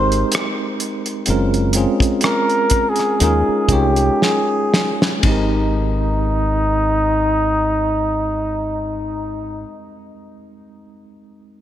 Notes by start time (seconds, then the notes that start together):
Already playing: G#1 G#3 C4 D#4 G4 A#4 C5
0.12 closed hi-hat
0.32 cross-stick, closed hi-hat
0.80 closed hi-hat
1.06 closed hi-hat
1.26 F#1 G#3 C4 C#4 F4, closed hi-hat
1.30 A#4
1.54 closed hi-hat
1.73 G#3 C4 C#4 F4, closed hi-hat
1.77 G#4
2.00 kick, closed hi-hat
2.21 A#4, cross-stick, closed hi-hat
2.50 closed hi-hat
2.70 kick, closed hi-hat
2.89 G#4
2.96 cross-stick, closed hi-hat
3.20 D#2 G#3 C#4 D#4 F4 G#4 A#4, closed hi-hat
3.49 muted fingered electric bass stroke
3.69 C2 G#3 C#4 D#4 F4 C#5, kick, closed hi-hat
3.73 G4
3.96 closed hi-hat
4.22 G#4, snare
4.74 snare
5.02 snare
5.19 G#3 C4
5.23 G#1 D#4, kick, ride
5.27 D#4 G4
5.32 A#4